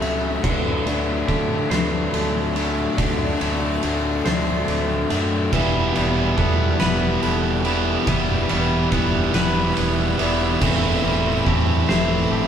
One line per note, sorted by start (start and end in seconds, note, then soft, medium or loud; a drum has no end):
0.00 0.37 C#2 medium
0.00 0.41 F#2 medium
0.00 0.42 C#3 medium
0.00 0.42 F#3 medium
0.00 1.31 A3 medium
0.00 0.44 A3 medium
0.00 0.42 C#4 medium
0.00 0.44 E4 medium
0.00 0.44 F#4 medium
0.00 0.40 A4 medium
0.00 0.46 C5 medium
0.00 0.47 C5 medium
0.00 0.40 E5 medium
0.00 0.43 E5 medium
0.00 0.40 F#5 medium
0.00 0.42 B5 medium
0.00 ride medium
0.43 0.80 D2 medium
0.43 0.86 D3 medium
0.43 2.56 D3 medium
0.43 0.86 F#3 medium
0.43 0.87 A3 medium
0.43 0.87 D4 medium
0.43 5.50 A4 medium
0.43 1.28 B4 medium
0.43 5.49 D5 medium
0.43 10.58 G5 medium
0.43 5.49 A5 medium
0.43 kick loud
0.43 crash medium
0.85 1.22 D2 medium
0.85 1.28 D3 medium
0.85 1.28 F#3 medium
0.85 1.29 A3 medium
0.85 1.29 D4 medium
0.85 ride medium
1.28 1.70 D3 medium
1.28 1.65 D3 medium
1.28 1.70 F#3 medium
1.28 1.71 A3 medium
1.28 1.72 D4 medium
1.28 4.78 G4 medium
1.28 1.71 A4 medium
1.28 kick medium
1.28 ride medium
1.70 2.07 D2 medium
1.70 2.55 D3 medium
1.70 2.55 F#3 medium
1.70 2.55 A3 medium
1.70 2.57 D4 loud
1.70 2.13 B4 medium
1.70 3.83 C5 medium
1.70 snare medium
1.70 ride medium
2.13 2.85 D2 medium
2.13 2.98 A4 medium
2.13 ride medium
2.55 2.97 D3 medium
2.55 2.97 F#3 medium
2.55 4.68 A3 medium
2.55 2.98 A3 medium
2.55 2.99 D4 medium
2.55 ride medium
2.97 3.35 D2 medium
2.97 5.10 D3 medium
2.97 3.40 D3 medium
2.97 3.40 F#3 medium
2.97 3.40 A3 medium
2.97 3.41 D4 medium
2.97 kick loud
2.97 ride medium
3.41 3.77 D2 medium
3.41 3.82 D3 medium
3.41 3.82 F#3 medium
3.41 3.83 A3 medium
3.41 3.84 D4 medium
3.41 ride medium
3.83 4.20 D2 medium
3.83 4.24 D3 medium
3.83 4.24 F#3 medium
3.83 4.25 A3 medium
3.83 4.26 D4 medium
3.83 ride medium
4.25 4.62 D2 medium
4.25 5.09 D3 medium
4.25 5.09 F#3 medium
4.25 5.10 A3 medium
4.25 5.11 D4 loud
4.25 5.53 C5 medium
4.25 5.10 C5 medium
4.25 snare medium
4.25 ride medium
4.68 5.04 D2 medium
4.68 ride medium
5.10 5.47 F#2 medium
5.10 5.50 D3 medium
5.10 5.50 F#3 medium
5.10 5.53 A3 medium
5.10 5.51 A3 medium
5.10 5.53 D4 medium
5.10 5.52 E5 medium
5.10 ride medium
5.52 5.89 E1 medium
5.52 5.94 E2 medium
5.52 5.94 B2 medium
5.52 5.94 E3 medium
5.52 7.69 E3 medium
5.52 5.95 E3 medium
5.52 5.95 G3 medium
5.52 5.95 B3 medium
5.52 5.96 E4 medium
5.52 6.37 B4 medium
5.52 10.58 B4 medium
5.52 12.47 E5 medium
5.52 8.05 D6 medium
5.52 kick loud
5.52 crash medium
5.95 6.32 E1 medium
5.95 6.37 E2 medium
5.95 6.37 B2 medium
5.95 6.36 E3 medium
5.95 6.38 E3 medium
5.95 6.36 G3 medium
5.95 8.50 G3 medium
5.95 6.37 B3 medium
5.95 6.37 E4 medium
5.95 ride medium
6.36 6.79 E2 medium
6.36 6.74 E2 medium
6.36 6.79 B2 medium
6.36 6.78 E3 medium
6.36 6.80 E3 medium
6.36 6.79 G3 medium
6.36 6.78 B3 medium
6.36 7.22 B3 medium
6.36 6.79 E4 medium
6.36 6.80 A4 medium
6.36 kick medium
6.36 ride medium
6.78 7.17 E1 medium
6.78 7.64 E2 loud
6.78 7.64 B2 medium
6.78 7.64 E3 medium
6.78 7.66 E3 loud
6.78 7.64 G3 medium
6.78 7.63 B3 medium
6.78 7.65 E4 medium
6.78 8.92 B4 medium
6.78 7.22 B4 medium
6.78 snare medium
6.78 ride medium
7.22 7.95 E1 medium
7.22 8.91 B3 medium
7.22 8.07 A4 medium
7.22 ride medium
7.64 8.07 E2 medium
7.64 8.07 B2 medium
7.64 9.78 D3 medium
7.64 8.05 E3 medium
7.64 8.08 E3 medium
7.64 8.06 G3 medium
7.64 8.06 B3 medium
7.64 8.07 E4 loud
7.64 ride medium
8.06 8.44 E1 medium
8.06 8.49 E2 medium
8.06 8.49 B2 loud
8.06 8.48 E3 medium
8.06 10.22 E3 medium
8.06 8.51 E3 medium
8.06 8.49 G3 medium
8.06 8.48 B3 medium
8.06 8.49 E4 medium
8.06 10.60 E6 medium
8.06 kick loud
8.06 ride medium
8.49 8.86 E1 medium
8.49 8.92 E2 medium
8.49 8.92 B2 loud
8.49 8.91 E3 medium
8.49 8.93 E3 medium
8.49 8.91 G3 medium
8.49 11.04 G3 medium
8.49 8.91 B3 loud
8.49 8.92 E4 medium
8.49 ride medium
8.91 9.28 E1 medium
8.91 9.34 E2 medium
8.91 9.34 B2 medium
8.91 9.33 E3 medium
8.91 9.36 E3 medium
8.91 9.34 G3 loud
8.91 9.75 B3 medium
8.91 9.33 B3 medium
8.91 9.34 E4 medium
8.91 kick medium
8.91 ride medium
9.34 9.71 E1 medium
9.34 10.18 E2 medium
9.34 10.18 B2 loud
9.34 10.18 E3 medium
9.34 10.19 E3 loud
9.34 10.18 G3 medium
9.34 10.18 B3 medium
9.34 10.19 E4 loud
9.34 10.62 B4 medium
9.34 10.19 B4 medium
9.34 snare medium
9.34 ride medium
9.76 10.14 E1 medium
9.76 10.62 B3 medium
9.76 ride medium
10.18 10.56 E1 medium
10.18 12.47 E2 medium
10.18 10.59 B2 medium
10.18 10.62 D3 medium
10.18 10.60 E3 medium
10.18 10.61 E3 medium
10.18 10.60 G3 medium
10.18 10.59 B3 loud
10.18 10.61 E4 loud
10.18 10.62 D5 medium
10.18 ride medium
10.60 10.98 E1 loud
10.60 12.47 E2 medium
10.60 11.02 A2 loud
10.60 11.02 E3 medium
10.60 11.04 E3 loud
10.60 11.02 A3 loud
10.60 11.04 A3 loud
10.60 11.03 C4 loud
10.60 11.03 E4 loud
10.60 12.47 A4 medium
10.60 11.47 B4 medium
10.60 12.47 G5 medium
10.60 12.47 A5 medium
10.60 kick loud
10.60 crash loud
11.02 11.40 E1 loud
11.02 11.45 A2 medium
11.02 11.45 E3 loud
11.02 11.47 E3 loud
11.02 12.47 G3 medium
11.02 11.46 A3 loud
11.02 11.47 A3 loud
11.02 11.46 C4 loud
11.02 11.46 E4 loud
11.46 11.83 E2 medium
11.46 11.88 A2 medium
11.46 11.88 E3 medium
11.46 11.89 E3 medium
11.46 11.89 A3 medium
11.46 11.90 A3 medium
11.46 11.89 C4 medium
11.46 11.90 E4 medium
11.46 12.30 G4 medium
11.46 11.88 A4 medium
11.46 kick medium
11.89 12.26 E1 loud
11.89 12.47 A2 loud
11.89 12.47 E3 medium
11.89 12.47 E3 loud
11.89 12.47 A3 loud
11.89 12.47 C4 loud
11.89 12.47 E4 loud
11.89 12.31 B4 medium
11.89 12.47 C5 medium
11.89 snare medium
12.31 12.47 G1 medium
12.31 12.47 G4 medium
12.31 12.47 A4 medium